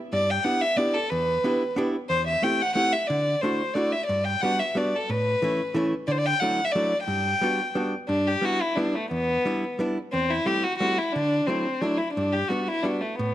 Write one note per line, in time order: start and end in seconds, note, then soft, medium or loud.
0.13 0.38 G2 medium
0.13 0.32 D5 medium
0.30 0.46 G5 medium
0.44 0.63 B3 medium
0.44 0.63 D4 medium
0.44 0.63 E4 medium
0.44 0.63 G4 medium
0.44 0.63 F#5 medium
0.62 0.78 E5 loud
0.77 0.96 B3 medium
0.77 0.96 D4 soft
0.77 0.97 E4 medium
0.77 0.97 G4 medium
0.77 0.96 D5 medium
0.94 1.11 A4 medium
1.10 1.37 E2 medium
1.10 1.77 B4 medium
1.44 1.62 B3 medium
1.44 1.62 D4 soft
1.44 1.63 E4 medium
1.44 1.63 G4 medium
1.76 1.95 B3 medium
1.76 1.95 D4 medium
1.76 1.95 E4 medium
1.76 1.96 G4 medium
2.09 2.35 E2 medium
2.09 2.26 C5 loud
2.28 2.45 E5 loud
2.43 2.61 A3 medium
2.43 2.61 C4 soft
2.43 2.62 E4 medium
2.43 2.62 G4 medium
2.43 2.63 G5 medium
2.62 2.75 F#5 medium
2.75 2.94 A3 medium
2.75 2.94 C4 soft
2.75 2.94 E4 medium
2.75 2.95 G4 medium
2.75 2.95 F#5 loud
2.93 3.09 E5 medium
3.08 3.35 D3 medium
3.08 3.43 D5 medium
3.41 3.61 A3 medium
3.41 3.61 D4 medium
3.41 3.61 E4 medium
3.41 3.62 F#4 medium
3.41 3.76 C5 medium
3.74 3.93 A3 medium
3.74 3.94 D4 medium
3.74 3.94 E4 medium
3.74 3.94 F#4 medium
3.74 3.94 D5 medium
3.92 4.06 E5 medium
4.07 4.34 G2 medium
4.07 4.26 D5 medium
4.25 4.43 G5 medium
4.41 4.61 G3 medium
4.41 4.61 B3 soft
4.41 4.61 D4 medium
4.41 4.62 F#4 medium
4.41 4.61 F#5 medium
4.60 4.79 E5 medium
4.75 4.93 G3 medium
4.75 4.93 B3 soft
4.75 4.94 D4 medium
4.75 4.94 F#4 medium
4.75 4.98 D5 medium
4.96 5.11 A4 medium
5.10 5.34 A2 medium
5.10 5.76 B4 medium
5.42 5.60 E3 medium
5.42 5.60 A3 medium
5.42 5.61 C#4 medium
5.42 5.60 E4 medium
5.74 5.92 E3 medium
5.74 5.93 A3 medium
5.74 5.93 C#4 medium
5.74 5.94 E4 medium
6.07 6.33 D3 medium
6.07 6.13 D5 medium
6.12 6.20 C5 medium
6.18 6.28 D5 loud
6.26 6.41 G5 loud
6.40 6.59 F#3 medium
6.40 6.60 A3 medium
6.40 6.60 D4 medium
6.40 6.60 E4 medium
6.40 6.67 F#5 medium
6.65 6.74 E5 medium
6.72 6.93 F#3 medium
6.72 6.93 A3 medium
6.72 7.03 D5 medium
6.77 6.93 D4 medium
6.77 6.93 E4 soft
7.04 7.33 G2 medium
7.04 7.88 G5 medium
7.41 7.60 G3 medium
7.41 7.60 B3 medium
7.41 7.60 D4 soft
7.41 7.61 F#4 medium
7.75 7.94 G3 medium
7.75 7.93 B3 medium
7.75 7.94 D4 medium
7.75 7.94 F#4 medium
8.09 8.35 G2 medium
8.09 8.29 D4 medium
8.28 8.47 G4 medium
8.42 8.60 G3 medium
8.42 8.61 B3 soft
8.42 8.61 D4 soft
8.42 8.62 E4 medium
8.42 8.63 F#4 medium
8.62 8.77 E4 medium
8.76 8.95 G3 medium
8.76 8.96 B3 medium
8.76 8.97 D4 medium
8.76 8.96 D4 soft
8.76 8.96 E4 medium
8.95 9.11 A3 medium
9.11 9.37 E2 medium
9.11 9.75 B3 medium
9.45 9.63 G3 medium
9.45 9.63 B3 medium
9.45 9.63 D4 medium
9.45 9.64 E4 medium
9.79 9.97 G3 medium
9.79 9.97 B3 medium
9.79 9.97 D4 medium
9.79 9.98 E4 medium
10.13 10.38 E2 medium
10.13 10.32 C4 loud
10.31 10.48 E4 medium
10.46 10.64 G3 medium
10.46 10.64 A3 soft
10.46 10.64 C4 soft
10.46 10.64 E4 medium
10.46 10.65 G4 medium
10.63 10.78 F#4 medium
10.79 10.98 G3 medium
10.79 10.98 A3 medium
10.79 10.99 C4 medium
10.79 10.98 E4 medium
10.79 11.00 F#4 loud
10.98 11.15 E4 medium
11.13 11.40 D3 medium
11.13 11.49 D4 loud
11.47 11.66 F#3 medium
11.47 11.66 A3 soft
11.47 11.83 C4 medium
11.47 11.66 D4 soft
11.47 11.66 E4 medium
11.81 12.00 F#3 medium
11.81 12.00 A3 soft
11.81 11.99 D4 medium
11.81 12.00 D4 soft
11.81 12.01 E4 medium
11.98 12.13 E4 medium
12.14 12.42 G2 medium
12.14 12.34 D4 medium
12.33 12.50 G4 medium
12.48 12.68 G3 medium
12.48 12.68 B3 soft
12.48 12.69 D4 soft
12.48 12.70 F#4 medium
12.48 12.69 F#4 medium
12.68 12.85 E4 medium
12.83 13.02 G3 soft
12.83 13.02 B3 soft
12.83 13.02 D4 medium
12.83 13.02 D4 soft
12.83 13.03 F#4 medium
13.01 13.17 A3 medium
13.16 13.34 A2 medium
13.16 13.34 B3 medium